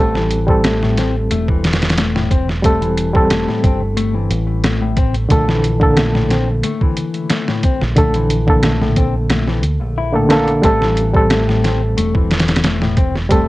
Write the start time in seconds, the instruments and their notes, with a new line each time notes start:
Already playing: fingered electric bass A1, reed electric piano G3 C4, clean electric guitar A3
0.00 reed electric piano A4
0.15 clean electric guitar E3, snare
0.31 closed hi-hat
0.47 reed electric piano G3 C4 A4, kick
0.64 clean electric guitar A3, snare, closed hi-hat
0.83 clean electric guitar A2, snare
0.97 clean electric guitar C4, snare, closed hi-hat
1.31 fingered electric bass E1, clean electric guitar A3, closed hi-hat
1.48 clean electric guitar E3, kick
1.64 snare, closed hi-hat
1.73 snare, closed hi-hat
1.82 snare, closed hi-hat
1.89 snare, closed hi-hat
1.97 clean electric guitar A3, snare, closed hi-hat
2.16 clean electric guitar A2, snare
2.31 clean electric guitar C4, kick, closed hi-hat
2.49 snare
2.62 reed electric piano G3 C4 A4, clean electric guitar A3, kick, closed hi-hat
2.81 clean electric guitar E3, closed hi-hat
2.97 closed hi-hat
3.13 reed electric piano G3 C4 A4, kick
3.30 clean electric guitar A3, snare, closed hi-hat
3.48 clean electric guitar A2, snare
3.63 fingered electric bass G1, clean electric guitar C4, kick, closed hi-hat
3.97 clean electric guitar A3, closed hi-hat
4.15 clean electric guitar E3
4.30 fingered electric bass A1, closed hi-hat
4.64 clean electric guitar A3, snare, closed hi-hat
4.82 clean electric guitar A2
4.97 clean electric guitar C4, kick, closed hi-hat
5.14 closed hi-hat
5.29 fingered electric bass A#1, reed electric piano D3 A4, clean electric guitar A3, kick, closed hi-hat
5.49 clean electric guitar E3, snare
5.64 closed hi-hat
5.80 reed electric piano D3 A#3 A4, kick
5.97 clean electric guitar A3, snare, closed hi-hat
6.15 clean electric guitar A2, snare
6.30 clean electric guitar C4, snare, closed hi-hat
6.63 clean electric guitar A3, closed hi-hat
6.81 clean electric guitar E3, kick
6.97 closed hi-hat
7.14 closed hi-hat
7.30 clean electric guitar A3, snare, closed hi-hat
7.48 clean electric guitar A2, snare
7.63 clean electric guitar C4, kick, closed hi-hat
7.81 fingered electric bass A#1, snare
7.96 reed electric piano D3 A4, clean electric guitar A3, kick, closed hi-hat
8.14 clean electric guitar E3, closed hi-hat
8.30 closed hi-hat
8.47 reed electric piano D3 A#3 A4, kick
8.63 clean electric guitar A3, snare, closed hi-hat
8.82 clean electric guitar A2, snare
8.96 clean electric guitar C4, kick, closed hi-hat
9.30 clean electric guitar A3, snare, closed hi-hat
9.48 clean electric guitar E3, snare
9.63 fingered electric bass D2, closed hi-hat
9.82 fingered electric bass A#1
9.98 clean electric guitar E4
10.12 clean electric guitar A2, reed electric piano D3 A#3 A4
10.29 reed electric piano D3 A#3 A4, clean electric guitar A3, snare, closed hi-hat
10.48 closed hi-hat
10.62 fingered electric bass A1, reed electric piano G3 C4 A4, clean electric guitar A3, kick, closed hi-hat
10.82 clean electric guitar E3, snare
10.97 closed hi-hat
11.13 reed electric piano G3 C4 A4, kick
11.30 clean electric guitar A3, snare, closed hi-hat
11.48 clean electric guitar A2, snare
11.64 clean electric guitar C4, snare, closed hi-hat
11.97 fingered electric bass E1, clean electric guitar A3, closed hi-hat
12.15 clean electric guitar E3, kick
12.31 snare, closed hi-hat
12.39 snare, closed hi-hat
12.48 snare, closed hi-hat
12.56 snare, closed hi-hat
12.64 clean electric guitar A3, snare, closed hi-hat
12.82 clean electric guitar A2, snare
12.97 clean electric guitar C4, kick, closed hi-hat
13.15 snare
13.29 reed electric piano G3 C4 A4, clean electric guitar A3, kick, closed hi-hat